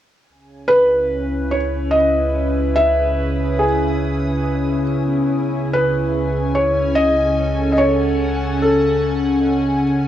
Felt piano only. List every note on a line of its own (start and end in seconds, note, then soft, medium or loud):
0.68 1.55 B4 medium
1.51 1.96 C#5 medium
1.91 2.79 D#5 medium
2.75 3.63 E5 medium
3.59 4.82 G#4 medium
5.73 6.58 B4 medium
6.55 6.98 C#5 medium
6.95 7.71 D#5 medium
7.72 7.79 D#5 medium
7.78 8.64 C#5 medium
8.62 9.83 A4 medium